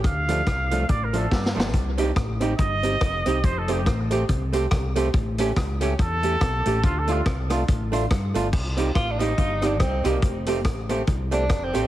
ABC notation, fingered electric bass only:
X:1
M:4/4
L:1/8
Q:"Swing" 1/4=141
K:Cdor
V:1 name="Fingered electric bass" clef=bass
D,,2 C,,2 A,,,2 G,, G,,, | C,,2 A,,,2 G,,,2 F,,, C,, | F,,,2 A,,,2 C,,2 C,,2 | A,,,2 ^C,,2 =E,,2 =B,,, A,,, |
D,,2 C,,2 A,,,2 G,, G,,, | C,,2 A,,,2 G,,,2 C,, C,, | F,,,2 A,,,2 C,,2 F,,, A,,, |]